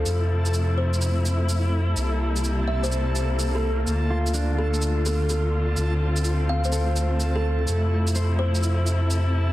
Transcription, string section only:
Already playing: F3
0.05 C3 A3 E4
1.96 C3 G3 A#3
3.86 D3 A3 F4
5.77 A3 C4
7.67 C3 F3 E4

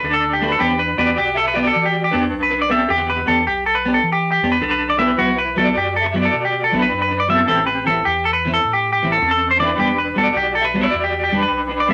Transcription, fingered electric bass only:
0.03 D2
0.60 E2
0.98 E2
1.18 B1
1.76 E3
2.13 E2
2.33 B1
2.89 E2
3.28 E2
3.46 B1
4.03 E3
4.42 E2
4.62 B1
5.20 B1
5.58 B1
5.76 F#2
6.33 B2
6.73 B1
6.92 F#2
7.50 A1
7.87 A1
8.06 E2
8.64 A2
9.02 A1
9.21 E2
9.79 E1
10.17 E1
10.35 B1
10.94 E2
11.31 E1
11.51 B1

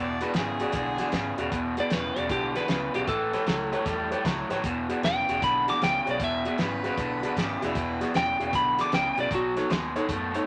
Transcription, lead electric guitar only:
1.80 D5
1.93 B4
2.18 D5
2.31 G4
2.56 B4
2.96 G4
3.08 A4
5.05 G5
5.44 B5
5.70 D6
5.84 G5
6.11 D5
6.24 E5
8.17 G5
8.55 B5
8.81 D6
8.94 G5
9.20 D5
9.35 F#4

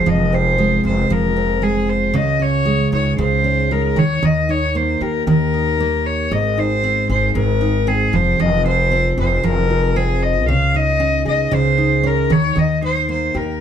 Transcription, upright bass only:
0.07 F1
0.85 F1
1.11 F1
2.15 C#2
2.93 C#2
3.18 C#2
3.97 D#2
4.23 D#2
5.01 D#2
5.27 D#2
6.31 G#1
7.09 G#1
7.35 G#1
8.13 F1
8.40 F1
9.18 F1
9.44 F1
10.48 C#2
11.26 C#2
11.52 C#2
12.30 D#2
12.57 D#2
13.35 D#2

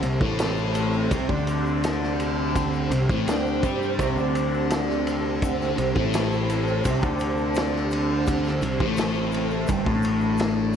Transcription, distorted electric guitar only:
0.03 C3
0.21 A2 A3
1.11 C3 C4
1.29 D3 D4
2.92 C3
3.10 A2 A3
3.28 D3 D4
3.64 G3 G4
3.99 C3 C4
4.17 D3 D4
5.77 C3
5.95 A2 A3
6.86 C3 C4
7.03 D3 D4
8.63 C3
8.80 A2 A3
9.68 G2 G3
9.85 A2 A3

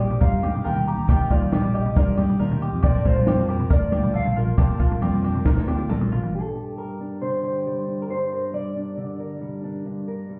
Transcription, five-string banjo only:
0.00 G4
0.21 A#4
0.43 G4
0.64 A#4
0.88 G4
1.10 G4
1.31 F4
1.53 G4
1.75 G4
1.96 A#4
2.17 G4
2.39 A#4
2.62 G4
2.83 G4
3.05 F4
3.28 G4
3.49 G4
3.70 A#4
3.92 G4
4.14 A4
4.36 F4
4.58 G4
4.79 F4
5.02 G4
5.24 G4
5.46 A#4
5.68 G4
5.89 A4
6.12 F4

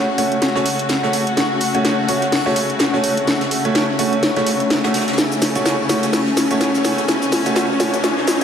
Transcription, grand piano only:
0.18 A3 C#4 F#4 C#5
0.55 A3 C#4 F#4 C#5
1.03 A3 C#4 F#4 C#5
1.75 A3 C#4 F#4 C#5
2.08 A3 C#4 F#4 C#5
2.46 A3 C#4 F#4 C#5
2.94 A3 C#4 F#4 C#5
3.65 A3 C#4 F#4 C#5
3.99 A3 C#4 F#4 C#5
4.36 A3 C#4 F#4 C#5
4.84 A3 C#4 F#4 C#5
5.55 A3 C#4 F#4 C#5
5.89 A3 C#4 F#4 C#5
6.51 A3 C#4 F#4 C#5
6.85 A3 C#4 F#4 C#5
7.46 A3 C#4 F#4 C#5
7.80 A3 C#4 F#4 C#5

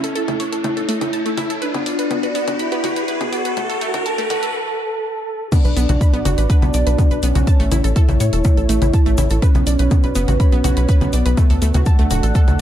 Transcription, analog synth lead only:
0.16 E4
1.62 D4
2.59 E4
3.33 F#4
4.06 A4
5.52 D4
6.50 D4
7.23 C#4
7.96 E4
9.42 C#4
10.40 C#4
11.13 B3
11.86 A3

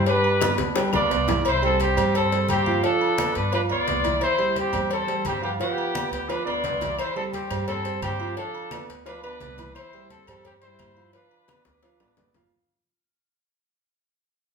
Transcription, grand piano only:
0.07 G3 G4 G5
0.42 B3 B4 D5
0.76 G3 G4 G5
0.93 B3 B4 D5
1.11 B3 B4 D5
1.28 E3 E4 E5
1.62 G3 G4 C5
1.96 G3 G4 C5
2.32 G3 G4 C5
2.66 F3 F4 F5
2.83 F3 F4 F5
3.18 B3 B4 D5
3.52 F3 F4 F5
3.70 B3 B4 D5
3.88 B3 B4 D5
4.05 E3 E4 E5
4.39 G3 G4 C5
4.73 G3 G4 C5
5.07 G3 G4 C5
5.42 F3 F4 F5
5.60 F3 F4 F5
5.94 B3 B4 D5
6.29 F3 F4 F5
6.45 B3 B4 D5
6.63 B3 B4 D5
6.81 E3 E4 E5
7.16 G3 G4 C5
7.51 G3 G4 C5
7.84 G3 G4 C5
8.20 F3 F4 F5
8.37 F3 F4 F5
8.72 B3 B4 D5
9.06 F3 F4 F5
9.24 B3 B4 D5
9.41 B3 B4 D5
9.58 E3 E4 E5
9.94 G3 G4 C5
10.29 G3 G4 C5
10.63 G3 G4 C5
10.97 F3 F4 F5
11.14 F3 F4 F5
11.48 B3 B4 D5
11.83 F3 F4 F5
12.01 B3 B4 D5
12.18 B3 B4 D5
12.35 F3 F4 F5

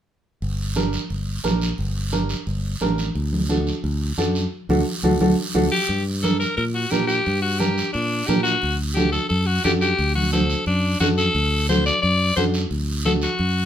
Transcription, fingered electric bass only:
0.42 G1
1.10 G1
1.44 A#1
1.79 G1
2.47 G1
2.81 A1
3.15 D2
3.84 D2
4.18 F#2
4.69 D2
5.03 D2
5.21 D2
5.55 D2
5.89 G2
6.58 A#2
6.92 A#2
7.27 G2
7.95 A#2
8.29 A#2
8.63 D2
9.31 F#2
9.65 F#2
9.99 D2
10.67 F#2
11.00 F#2
11.35 D2
12.03 F#2
12.37 F#2
12.71 D2
13.39 F#2

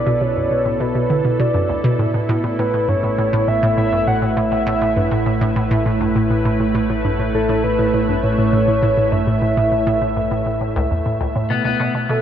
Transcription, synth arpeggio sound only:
0.06 B2
0.21 B2
0.36 F#2
0.51 B2
0.65 A2
0.80 B2
0.95 B2
1.10 D3
1.25 B2
1.40 B2
1.55 F#2
1.70 D2
1.84 B2
1.99 A2
2.14 A2
2.29 A2
2.44 A2
2.59 A2
2.74 A2
2.88 G2
3.03 A2
3.18 A2
3.33 A2
3.48 A2
3.63 A2
3.77 A2
3.92 G2
4.07 A2
4.22 A2
4.37 A2
4.52 A2
4.67 A2
4.82 A2
4.96 G2
5.11 A2
5.26 A2
5.41 A2
5.56 A2
5.71 A2
5.86 A2
6.01 G2
6.16 A2
6.30 A2
6.45 A2
6.60 A2
6.75 A2
6.90 A2
7.05 G2
7.19 A2
7.34 A2
7.49 A2
7.64 A2
7.79 A2
7.94 A2
8.09 G2
8.24 A2
8.38 A2
8.53 A2
8.68 A2
8.83 A2
8.97 A2
9.12 G2
9.27 A2
9.42 A2
9.57 A2
9.72 A2
9.87 A2
10.02 A2
10.17 G2
10.31 A2
10.46 A2
10.61 A2
10.76 C#2
10.91 E2
11.06 A2
11.21 C#2
11.36 A2
11.50 B2
11.65 B2
11.80 B2
11.95 B2
12.09 B2

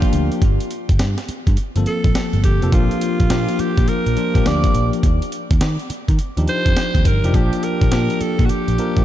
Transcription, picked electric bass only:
0.13 D2
0.42 G1
0.89 G1
1.00 G2
1.29 muted picked electric bass stroke
1.47 G2
1.58 muted picked electric bass stroke
1.76 G1
2.05 A#1
2.34 G1
2.44 G1
2.63 F1
2.73 A#1
3.20 A#1
3.30 A#2
3.59 muted picked electric bass stroke
3.78 A#2
3.88 muted picked electric bass stroke
4.07 A#1
4.35 A#1
4.46 D2
4.75 A#1
5.04 D#2
5.51 D#2
5.61 D#3
5.90 muted picked electric bass stroke
6.09 D#3
6.19 muted picked electric bass stroke
6.37 D#2
6.66 F2
6.95 D#2
7.06 G1
7.24 F1
7.34 A#1
7.82 A#1
7.92 A#2
8.21 muted picked electric bass stroke
8.39 A#2
8.50 muted picked electric bass stroke
8.68 A#1
8.97 A#1

